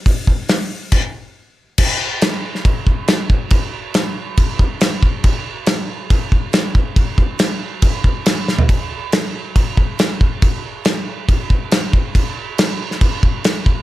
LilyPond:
\new DrumStaff \with { instrumentName = "Drums" } \drummode { \time 4/4 \tempo 4 = 139 <hho bd>8 bd8 <hho sn>4 <cymc bd>4 r4 | <cymc bd>4 <cymc sn>8. sn16 <cymc bd>8 bd8 <cymc sn>8 bd8 | <cymc bd>4 <cymc sn>4 <cymc bd>8 bd8 <cymc sn>8 bd8 | <cymc bd>4 <cymc sn>4 <cymc bd>8 bd8 <cymc sn>8 bd8 |
<cymc bd>8 bd8 <cymc sn>4 <cymc bd>8 bd8 <cymc sn>8 sn16 tomfh16 | <cymc bd>4 <cymc sn>4 <cymc bd>8 bd8 <cymc sn>8 bd8 | <cymc bd>4 <cymc sn>4 <cymc bd>8 bd8 <cymc sn>8 bd8 | <cymc bd>4 <cymc sn>8. sn16 <cymc bd>8 bd8 <cymc sn>8 bd8 | }